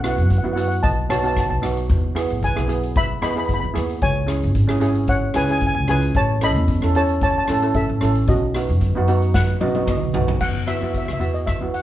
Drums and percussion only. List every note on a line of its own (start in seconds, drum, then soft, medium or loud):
0.04 cross-stick medium
0.04 closed hi-hat medium
0.18 closed hi-hat medium
0.30 kick medium
0.30 closed hi-hat medium
0.57 closed hi-hat medium
0.71 closed hi-hat medium
0.84 kick loud
0.84 closed hi-hat medium
1.10 cross-stick medium
1.10 closed hi-hat medium
1.24 closed hi-hat medium
1.37 kick medium
1.37 cross-stick medium
1.37 closed hi-hat medium
1.63 cross-stick medium
1.63 closed hi-hat medium
1.77 closed hi-hat medium
1.89 kick loud
1.89 closed hi-hat medium
2.16 cross-stick medium
2.16 closed hi-hat medium
2.30 closed hi-hat medium
2.43 kick medium
2.43 closed hi-hat medium
2.57 cross-stick medium
2.69 closed hi-hat medium
2.84 closed hi-hat medium
2.96 kick loud
2.96 closed hi-hat medium
3.22 cross-stick medium
3.22 closed hi-hat medium
3.37 closed hi-hat medium
3.49 kick medium
3.49 closed hi-hat medium
3.76 cross-stick medium
3.76 closed hi-hat medium
3.89 closed hi-hat medium
4.01 kick loud
4.01 closed hi-hat medium
4.28 cross-stick medium
4.28 closed hi-hat medium
4.42 closed hi-hat medium
4.55 kick medium
4.55 closed hi-hat medium
4.69 cross-stick medium
4.81 closed hi-hat medium
4.95 closed hi-hat medium
5.07 kick loud
5.07 closed hi-hat medium
5.34 cross-stick medium
5.34 closed hi-hat medium
5.49 closed hi-hat medium
5.61 kick medium
5.61 closed hi-hat medium
5.88 cross-stick medium
5.88 closed hi-hat medium
6.02 closed hi-hat medium
6.14 kick loud
6.14 closed hi-hat medium
6.41 cross-stick medium
6.41 closed hi-hat medium
6.56 closed hi-hat medium
6.68 kick medium
6.68 closed hi-hat medium
6.82 cross-stick medium
6.95 closed hi-hat medium
7.09 closed hi-hat medium
7.21 kick loud
7.21 closed hi-hat medium
7.48 cross-stick medium
7.48 closed hi-hat medium
7.62 closed hi-hat medium
7.74 kick medium
7.74 closed hi-hat medium
8.01 cross-stick medium
8.01 closed hi-hat medium
8.15 closed hi-hat medium
8.27 kick loud
8.27 closed hi-hat medium
8.54 cross-stick medium
8.54 closed hi-hat medium
8.68 closed hi-hat medium
8.81 kick medium
8.81 closed hi-hat medium
9.08 closed hi-hat medium
9.22 closed hi-hat medium
9.34 kick loud
9.34 snare medium
9.61 high tom medium
9.75 high tom medium
9.87 kick medium
9.87 mid tom medium
10.14 floor tom medium
10.28 floor tom medium
10.41 kick loud
10.41 crash medium
10.68 cross-stick medium
10.68 closed hi-hat medium
10.82 closed hi-hat medium
10.94 kick medium
10.94 closed hi-hat medium
11.08 cross-stick medium
11.21 closed hi-hat medium
11.35 closed hi-hat medium
11.47 kick loud
11.47 cross-stick medium
11.47 closed hi-hat medium
11.74 closed hi-hat medium